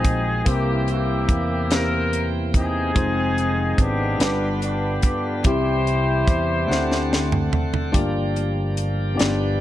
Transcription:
0.00 0.42 A#1 medium
0.00 0.42 D#3 medium
0.00 0.45 G#3 medium
0.00 0.49 G#3 medium
0.00 0.42 C4 medium
0.00 0.43 C4 medium
0.00 0.45 C4 medium
0.00 0.43 D#4 medium
0.00 0.48 D#4 medium
0.00 0.42 F4 medium
0.00 0.48 F4 medium
0.00 0.49 F#4 medium
0.00 0.47 G#4 medium
0.00 0.48 G5 medium
0.05 kick medium
0.05 closed hi-hat medium
0.45 1.25 C2 loud
0.45 1.67 C3 medium
0.45 2.92 E3 medium
0.45 1.25 A#3 medium
0.45 2.92 A#3 medium
0.45 0.89 A#3 medium
0.45 2.91 C4 medium
0.45 1.26 C4 medium
0.45 1.26 E4 medium
0.45 0.89 E4 medium
0.45 1.26 G4 medium
0.45 0.88 G4 medium
0.45 1.27 C5 medium
0.45 2.92 G5 medium
0.45 kick loud
0.45 closed hi-hat medium
0.88 2.10 A#3 medium
0.88 2.10 E4 medium
0.88 1.68 G4 medium
0.88 closed hi-hat soft
1.29 2.91 E2 medium
1.29 kick medium
1.29 closed hi-hat medium
1.70 2.51 A#3 medium
1.70 2.51 C4 medium
1.70 2.51 E4 medium
1.70 2.51 G4 medium
1.70 2.28 A#4 medium
1.70 2.52 C5 medium
1.70 snare loud
1.70 closed hi-hat medium
2.13 closed hi-hat medium
2.54 3.75 C4 medium
2.54 3.75 D#4 medium
2.54 3.75 G#4 medium
2.54 kick medium
2.54 closed hi-hat medium
2.94 3.75 F1 loud
2.94 4.20 C3 medium
2.94 4.20 D#3 medium
2.94 3.75 G#3 medium
2.94 4.20 G#3 medium
2.94 3.75 C4 medium
2.94 3.75 D#4 medium
2.94 4.19 F4 medium
2.94 3.76 F4 medium
2.94 3.76 C5 medium
2.94 kick loud
2.94 closed hi-hat medium
3.38 closed hi-hat soft
3.78 4.17 G#1 medium
3.78 4.62 B3 medium
3.78 4.62 D4 medium
3.78 4.58 G4 medium
3.78 kick medium
3.78 closed hi-hat medium
4.18 4.99 G1 medium
4.18 5.41 G2 medium
4.18 5.45 D3 medium
4.18 4.99 G3 medium
4.18 5.42 G3 medium
4.18 4.99 B3 medium
4.18 5.45 B3 medium
4.18 5.00 D4 medium
4.18 5.00 F4 medium
4.18 5.42 F4 medium
4.18 5.00 B4 medium
4.18 snare loud
4.18 closed hi-hat medium
4.62 5.42 B3 medium
4.62 5.42 D4 medium
4.62 5.42 G4 medium
4.62 closed hi-hat medium
5.02 kick medium
5.02 closed hi-hat medium
5.43 6.24 C2 medium
5.43 6.66 C3 medium
5.43 6.69 E3 medium
5.43 6.69 G3 medium
5.43 6.66 C4 medium
5.43 6.24 C4 medium
5.43 6.25 E4 medium
5.43 7.50 E4 medium
5.43 5.51 F4 medium
5.43 7.50 G4 medium
5.43 7.50 C5 medium
5.43 kick loud
5.43 closed hi-hat medium
5.47 6.26 G4 medium
5.47 6.72 G4 medium
5.87 closed hi-hat soft
6.27 6.66 E2 medium
6.27 kick medium
6.27 closed hi-hat medium
6.67 7.49 D2 medium
6.67 7.93 D3 medium
6.67 7.90 D3 medium
6.67 7.48 A3 medium
6.67 7.91 A3 medium
6.67 7.93 C4 medium
6.67 7.49 C4 medium
6.67 7.49 D4 medium
6.67 7.50 C5 medium
6.67 7.94 F#5 medium
6.67 7.50 F#5 medium
6.72 snare medium
6.92 snare medium
7.13 snare medium
7.32 mid tom medium
7.53 floor tom medium
7.74 floor tom medium
7.92 9.15 G1 medium
7.92 9.15 G2 medium
7.92 9.17 F3 medium
7.92 8.00 A3 medium
7.92 8.00 A3 soft
7.92 9.18 D4 medium
7.92 8.73 D4 medium
7.92 8.74 F4 medium
7.92 9.18 G4 medium
7.92 8.74 G4 medium
7.92 8.74 D5 medium
7.92 kick medium
7.92 closed hi-hat medium
7.98 9.21 A#3 medium
7.98 8.76 A#3 medium
8.36 closed hi-hat soft
8.77 closed hi-hat medium
9.15 9.61 G2 medium
9.15 9.61 F3 medium
9.15 9.61 B3 medium
9.15 9.61 D4 medium
9.15 9.61 F4 medium
9.15 9.61 G4 medium
9.15 9.61 D5 medium
9.19 9.61 G1 medium
9.19 9.61 D4 medium
9.19 snare loud
9.19 closed hi-hat medium

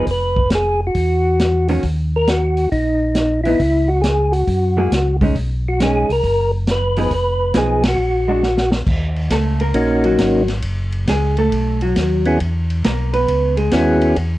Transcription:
0.07 0.91 F1 medium
0.07 kick soft
0.07 open hi-hat soft
0.11 0.50 B4 loud
0.36 kick medium
0.50 snare medium
0.50 closed hi-hat medium
0.55 0.81 G#4 medium
0.87 1.68 F#4 medium
0.95 1.79 E2 medium
0.95 kick soft
0.95 open hi-hat soft
1.39 snare medium
1.39 closed hi-hat medium
1.68 1.82 D#3 medium
1.68 1.82 A#3 medium
1.68 1.82 C#4 medium
1.68 1.82 F#4 medium
1.68 open hi-hat soft
1.83 2.67 D#2 medium
1.83 kick soft
1.83 open hi-hat soft
2.16 2.29 A#4 loud
2.27 2.69 F#4 medium
2.27 snare medium
2.27 closed hi-hat soft
2.57 open hi-hat soft
2.72 3.56 A#1 medium
2.72 3.41 D#4 medium
2.72 kick soft
2.72 open hi-hat soft
3.15 snare medium
3.15 closed hi-hat medium
3.44 3.58 E3 medium
3.44 3.59 B3 medium
3.44 3.59 D#4 medium
3.44 3.90 E4 medium
3.44 open hi-hat soft
3.60 4.44 C#2 medium
3.60 kick soft
3.60 open hi-hat soft
3.88 4.02 F#4 medium
4.01 4.33 G#4 medium
4.01 snare medium
4.01 closed hi-hat medium
4.32 5.16 F#4 medium
4.32 open hi-hat soft
4.47 4.88 F#2 medium
4.47 kick soft
4.47 open hi-hat soft
4.77 4.90 F#3 medium
4.77 4.90 A#3 medium
4.77 4.91 E4 medium
4.77 4.90 G#4 medium
4.91 5.32 C#2 medium
4.91 snare medium
4.91 closed hi-hat medium
5.21 5.34 G#3 medium
5.21 5.34 C#4 medium
5.21 5.35 D#4 medium
5.21 kick medium
5.21 open hi-hat soft
5.35 6.05 B1 medium
5.35 kick soft
5.35 open hi-hat soft
5.68 5.80 F#4 medium
5.80 6.06 G#3 medium
5.80 6.07 C#4 medium
5.80 6.07 D#4 medium
5.80 6.11 G#4 medium
5.80 snare medium
5.80 closed hi-hat medium
6.09 6.22 C2 medium
6.09 6.52 A#4 medium
6.09 open hi-hat soft
6.23 7.07 F#1 medium
6.23 kick soft
6.23 open hi-hat soft
6.67 snare medium
6.67 closed hi-hat medium
6.71 7.13 B4 medium
6.96 7.10 F3 medium
6.96 7.10 B3 medium
6.96 7.10 D#4 medium
6.96 7.11 G#4 medium
6.96 open hi-hat soft
7.11 7.52 F1 medium
7.11 7.58 B4 medium
7.11 kick soft
7.11 open hi-hat soft
7.54 7.96 B1 medium
7.54 7.82 F3 medium
7.54 7.82 B3 medium
7.54 7.82 D#4 medium
7.54 7.82 G#4 medium
7.54 7.84 G#4 medium
7.54 snare medium
7.54 closed hi-hat medium
7.83 snare medium
7.83 ride medium
7.88 8.70 F#4 medium
7.98 8.82 A#1 medium
8.28 8.41 G#3 soft
8.28 8.42 D4 medium
8.28 8.42 F#4 medium
8.43 snare soft
8.57 snare medium
8.71 snare medium
8.86 9.30 D#2 medium
8.86 kick medium
8.86 crash medium
9.16 ride soft
9.30 9.74 C#2 medium
9.30 9.60 A3 medium
9.30 9.60 A4 medium
9.30 kick soft
9.30 snare medium
9.30 hi-hat pedal medium
9.30 ride medium
9.60 10.02 A#3 medium
9.60 10.02 A#4 medium
9.60 ride soft
9.74 10.18 A#1 medium
9.74 10.43 A#3 soft
9.74 10.43 C#4 soft
9.74 10.43 D#4 soft
9.74 10.43 F#4 medium
9.74 kick soft
9.74 ride medium
10.04 10.46 F#3 medium
10.04 10.46 F#4 medium
10.04 ride soft
10.18 10.62 G#1 medium
10.18 kick soft
10.18 snare medium
10.18 hi-hat pedal medium
10.18 ride medium
10.48 snare soft
10.48 ride soft
10.62 11.06 F#1 medium
10.62 kick soft
10.62 ride medium
10.92 ride soft
11.07 11.50 C#2 medium
11.07 11.38 G#3 medium
11.07 11.37 G#4 medium
11.07 kick soft
11.07 snare medium
11.07 hi-hat pedal medium
11.07 ride medium
11.37 11.79 A3 medium
11.37 11.79 A4 medium
11.37 ride soft
11.52 11.95 B1 medium
11.52 kick soft
11.52 ride medium
11.81 12.24 F#3 soft
11.81 12.23 F#4 medium
11.81 ride soft
11.96 12.39 D#2 medium
11.96 kick soft
11.96 snare medium
11.96 hi-hat pedal soft
11.96 ride medium
12.25 12.39 B3 medium
12.25 12.39 C#4 medium
12.25 12.39 E4 soft
12.25 12.39 F#4 medium
12.25 12.39 G#4 medium
12.25 ride soft
12.40 12.83 E2 medium
12.40 kick soft
12.40 ride medium
12.70 ride soft
12.84 13.27 B1 medium
12.84 13.13 A#3 medium
12.84 13.13 A#4 medium
12.84 kick soft
12.84 snare medium
12.84 hi-hat pedal medium
12.84 ride medium
13.13 13.55 B3 medium
13.13 13.55 B4 loud
13.13 ride soft
13.28 13.71 C#2 medium
13.28 kick soft
13.28 ride medium
13.57 13.98 G#3 medium
13.57 13.99 G#4 medium
13.57 ride soft
13.72 14.15 D#2 medium
13.72 14.16 B3 medium
13.72 14.17 C#4 medium
13.72 14.17 E4 medium
13.72 14.17 F#4 medium
13.72 14.17 G#4 medium
13.72 kick soft
13.72 snare medium
13.72 hi-hat pedal soft
13.72 ride medium
14.01 ride soft
14.16 14.38 E2 medium
14.16 kick soft
14.16 ride soft

